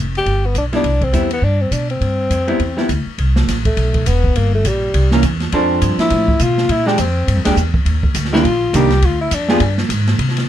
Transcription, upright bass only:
0.00 0.25 F1 medium
0.26 0.54 G1 medium
0.54 0.83 B1 medium
0.84 1.12 C2 medium
1.13 1.41 E2 medium
1.42 1.70 G2 medium
1.71 2.00 B2 medium
2.00 2.29 G2 medium
2.30 2.58 F2 medium
2.59 2.88 E2 medium
2.89 3.05 D2 medium
3.06 muted upright bass stroke soft
3.18 3.46 C2 medium
3.48 3.76 A1 medium
3.77 4.05 B1 medium
4.06 4.34 E1 medium
4.35 4.64 G1 medium
4.64 4.93 A#1 medium
4.94 5.22 C2 medium
5.23 5.51 E2 medium
5.52 5.81 F2 medium
5.81 5.97 G2 medium
5.97 muted upright bass stroke soft
6.11 6.39 A2 medium
6.40 6.68 B2 medium
6.69 6.97 A#2 medium
6.98 7.26 F2 medium
7.27 7.36 G2 medium
7.36 7.45 F2 medium
7.46 7.55 D2 medium
7.56 7.85 E2 medium
7.85 8.14 D#2 medium
8.15 8.43 D2 medium
8.44 8.72 A#1 medium
8.73 9.01 C2 medium
9.02 9.30 D2 medium
9.31 9.59 F2 medium
9.60 9.88 G2 medium
9.89 10.17 G#2 loud
10.19 10.47 C3 medium

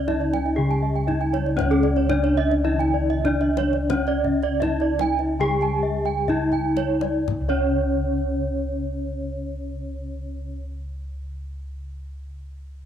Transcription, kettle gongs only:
0.00 0.57 C#2 loud
0.00 1.04 C#4 medium
0.09 0.17 D4 soft
0.58 2.05 C#3 medium
1.09 1.17 D4 medium
1.58 3.21 C#4 medium
1.63 5.38 C#2 loud
2.09 2.17 D4 soft
3.25 3.33 D4 soft
3.90 6.25 C#4 medium
4.62 4.70 D4 soft
5.40 8.31 C#3 medium
6.29 6.37 D4 medium
7.41 10.56 C#2 medium

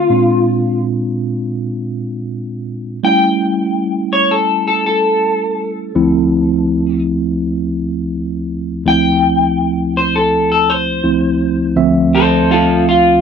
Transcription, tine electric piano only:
0.10 2.98 A#2 medium
0.10 2.98 G#3 medium
0.10 2.98 C4 medium
0.10 2.99 D4 medium
0.10 2.99 F4 medium
3.03 5.91 G3 medium
3.03 5.91 A3 soft
3.03 5.91 C#4 soft
3.03 5.91 E4 medium
5.95 8.82 D2 medium
5.95 8.82 F3 medium
5.95 8.82 A3 medium
5.95 8.83 C4 medium
5.95 8.83 E4 medium
8.85 11.00 D2 medium
8.85 11.00 F3 medium
8.85 11.00 A3 medium
8.85 11.00 C4 medium
8.85 11.01 E4 medium
11.04 11.75 D2 soft
11.04 11.75 F3 soft
11.04 11.75 A3 soft
11.04 11.75 C4 soft
11.04 11.77 E4 medium
11.76 13.21 D2 medium
11.76 13.21 F3 medium
11.76 13.21 A3 medium
11.76 13.21 C4 medium
11.76 13.21 E5 medium

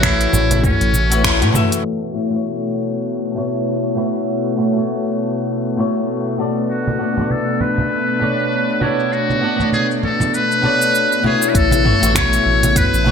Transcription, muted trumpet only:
0.04 0.64 E4 medium
0.65 1.51 C#4 medium
6.70 7.32 F#4 medium
7.31 7.62 A4 loud
7.61 8.84 B4 loud
8.82 9.14 E4 medium
9.13 9.73 F#4 medium
9.73 9.87 G#4 medium
10.04 10.36 A4 medium
10.34 11.25 B4 medium
11.26 11.51 G#4 medium
11.49 11.57 B4 medium
11.56 12.18 A4 medium
12.16 12.78 C#5 loud
12.77 13.11 B4 medium

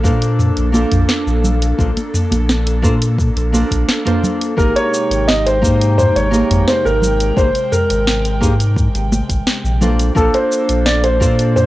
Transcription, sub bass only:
0.04 0.51 A#2 medium
0.57 0.85 A#1 medium
0.92 1.05 A#1 loud
1.27 1.73 A#1 loud
1.79 1.93 A#1 medium
2.31 2.85 A#1 medium
2.83 3.30 A#2 medium
3.36 3.64 A#1 medium
3.71 3.85 A#1 loud
4.58 4.72 G#1 loud
5.10 5.64 G#1 medium
5.62 6.09 G#2 medium
6.15 6.43 G#1 medium
6.50 6.64 G#1 loud
6.85 7.31 G#1 loud
7.37 7.51 G#1 loud
7.90 8.43 G#1 medium
8.41 8.88 G#2 medium
8.94 9.22 G#1 medium
9.29 9.43 G#1 loud
9.64 10.10 A#1 loud
10.16 10.30 A#1 loud
10.69 11.22 A#1 medium
11.21 11.66 A#2 medium

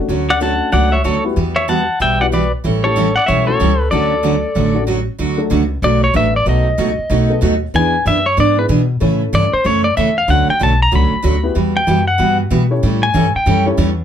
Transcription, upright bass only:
0.08 0.60 D2 medium
0.72 1.00 C#2 medium
1.05 1.32 D2 medium
1.36 1.88 E2 medium
2.00 2.51 B1 medium
2.65 3.15 A1 medium
3.28 3.55 B1 medium
3.60 3.87 C#2 medium
3.92 4.43 D2 medium
4.56 5.06 A1 medium
5.19 5.50 D2 medium
5.51 5.82 C#2 medium
5.82 6.13 B1 medium
6.14 6.45 A1 medium
6.46 6.77 B1 medium
6.78 6.97 C#2 medium
6.98 muted upright bass stroke soft
7.10 7.41 B1 medium
7.42 7.73 D#2 medium
7.74 8.05 E2 medium
8.06 8.36 F#2 medium
8.37 8.68 G#2 medium
8.69 9.00 B2 loud
9.01 9.32 A2 medium
9.33 9.51 G2 medium
9.53 muted upright bass stroke soft
9.65 9.96 F#2 loud
9.97 10.28 E2 medium
10.28 10.47 D2 medium
10.49 muted upright bass stroke soft
10.61 10.91 B1 medium
10.92 11.10 C#2 loud
11.12 muted upright bass stroke soft
11.24 11.55 D2 loud
11.56 11.86 E2 medium
11.87 12.18 F#2 medium
12.19 12.50 G2 medium
12.51 12.82 B2 loud
12.83 13.14 A2 medium
13.15 13.33 G2 loud
13.35 muted upright bass stroke soft
13.46 13.77 F#2 loud
13.78 14.04 E2 loud

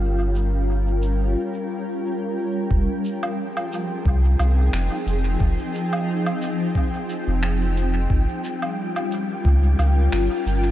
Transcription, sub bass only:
0.00 1.36 G1 medium
2.71 2.87 F1 loud
4.05 4.36 C2 loud
4.40 4.70 C2 medium
4.73 4.90 F1 loud
5.07 5.37 F1 loud
5.40 5.57 F1 loud
7.28 8.07 F1 loud
8.10 8.27 G1 loud
9.45 9.75 C#2 loud
9.79 10.09 C#2 medium
10.13 10.29 G1 loud
10.46 10.71 G1 loud

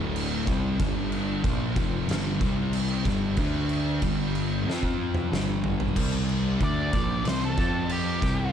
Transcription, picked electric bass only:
0.00 0.43 D1 medium
0.47 0.77 C2 loud
0.79 1.40 G1 medium
1.44 1.74 A#1 medium
1.76 2.06 F1 loud
2.09 2.39 G1 loud
2.41 3.02 C2 loud
3.05 3.35 G1 loud
3.37 3.98 D2 loud
4.02 4.63 G1 loud
4.67 5.28 F2 loud
5.32 5.93 G1 medium
5.96 6.57 C2 loud
6.61 6.91 D2 medium
6.93 7.23 A#1 loud
7.25 7.56 C2 loud
7.57 8.18 F2 loud
8.22 8.52 C2 medium

